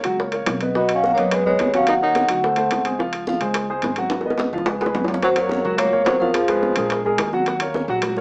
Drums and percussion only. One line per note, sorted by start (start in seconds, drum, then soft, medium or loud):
0.04 high bongo soft
0.04 high conga soft
0.04 high timbale medium
0.18 high bongo medium
0.18 high conga soft
0.32 high bongo soft
0.32 high conga soft
0.32 high timbale medium
0.46 high bongo medium
0.46 low bongo medium
0.46 high conga medium
0.46 high timbale medium
0.46 low timbale medium
0.61 high bongo soft
0.61 high conga medium
0.61 high timbale medium
0.75 high bongo medium
0.75 high conga soft
0.89 high bongo soft
0.89 high conga soft
0.89 high timbale medium
1.04 high bongo medium
1.04 high conga medium
1.18 high bongo soft
1.18 high conga soft
1.18 high timbale medium
1.31 high bongo medium
1.31 high conga soft
1.31 high timbale medium
1.46 high conga soft
1.59 high bongo medium
1.59 low bongo medium
1.59 high conga medium
1.59 high timbale medium
1.74 high bongo soft
1.74 high conga medium
1.74 high timbale medium
1.87 high bongo medium
1.87 high conga soft
1.87 high timbale medium
2.03 high conga soft
2.15 high bongo medium
2.15 high conga medium
2.15 high timbale medium
2.29 high bongo soft
2.29 high conga soft
2.29 high timbale medium
2.43 high bongo medium
2.43 high conga soft
2.56 high bongo soft
2.56 high conga soft
2.56 high timbale medium
2.71 high bongo medium
2.71 low bongo medium
2.71 high conga medium
2.71 high timbale medium
2.85 high bongo soft
2.85 high conga medium
2.85 high timbale medium
2.99 high bongo medium
2.99 high conga soft
3.13 high bongo soft
3.13 high conga soft
3.13 high timbale medium
3.27 high bongo medium
3.27 high conga loud
3.41 high bongo soft
3.41 high conga soft
3.41 high timbale medium
3.54 high bongo medium
3.54 high conga soft
3.54 high timbale medium
3.69 high conga soft
3.82 high bongo medium
3.82 low bongo medium
3.82 high conga medium
3.82 high timbale medium
3.96 high bongo soft
3.96 high conga medium
3.96 high timbale medium
4.10 high bongo medium
4.10 high conga soft
4.10 high timbale medium
4.21 high bongo medium
4.21 high conga soft
4.30 high bongo medium
4.38 high bongo medium
4.38 high conga medium
4.38 low timbale medium
4.53 high conga soft
4.58 low bongo medium
4.66 high conga soft
4.66 low timbale medium
4.81 high conga soft
4.81 low timbale medium
4.86 low bongo medium
4.95 high conga medium
4.95 low timbale medium
5.04 low bongo medium
5.04 low timbale medium
5.09 high conga medium
5.14 low bongo medium
5.23 high bongo medium
5.23 high conga soft
5.23 high timbale medium
5.36 high bongo soft
5.36 high conga soft
5.36 high timbale medium
5.49 high bongo medium
5.49 high conga medium
5.49 low timbale medium
5.66 high conga soft
5.78 high bongo medium
5.78 high conga soft
5.78 low conga medium
5.78 high timbale medium
5.92 high bongo soft
5.92 high conga soft
6.06 high bongo medium
6.06 low bongo medium
6.06 high conga medium
6.06 high timbale medium
6.06 low timbale medium
6.22 high bongo soft
6.22 high conga medium
6.34 high bongo medium
6.34 high conga soft
6.34 high timbale medium
6.48 high conga soft
6.48 high timbale medium
6.63 high bongo medium
6.63 high conga medium
6.63 low timbale medium
6.76 high bongo soft
6.76 high conga soft
6.76 high timbale medium
6.90 high bongo medium
6.90 high conga soft
6.90 high timbale medium
7.05 high bongo soft
7.05 high conga soft
7.18 high bongo medium
7.18 low bongo medium
7.18 high conga soft
7.18 high timbale loud
7.18 low timbale medium
7.33 high bongo soft
7.33 high conga medium
7.46 high bongo medium
7.46 high conga soft
7.46 high timbale medium
7.60 high bongo soft
7.60 high conga soft
7.60 high timbale loud
7.74 high bongo medium
7.74 high conga medium
7.74 low timbale medium
7.88 high conga soft
8.02 high bongo medium
8.02 high conga soft
8.02 low conga medium
8.02 high timbale medium
8.16 high bongo soft
8.16 high conga soft
8.16 low conga medium